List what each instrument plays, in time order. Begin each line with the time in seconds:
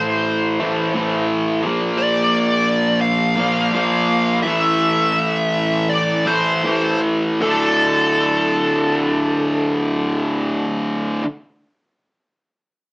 Already playing: distorted electric guitar A2 E3 A3, lead electric guitar C5
0.60 distorted electric guitar A2 E3 A3
0.94 distorted electric guitar A2 E3 A3
1.63 distorted electric guitar A#2 F3 A#3
1.98 lead electric guitar D5
3.01 lead electric guitar F5
3.36 distorted electric guitar A#2 F3 A#3
3.72 distorted electric guitar A#2 F3 A#3
4.43 distorted electric guitar A2 E3 A3, lead electric guitar E5
5.89 lead electric guitar D5
6.26 distorted electric guitar A2 E3 A3, lead electric guitar C5
6.64 distorted electric guitar A2 E3 A3
7.41 distorted electric guitar D2 A2 D3, lead electric guitar A4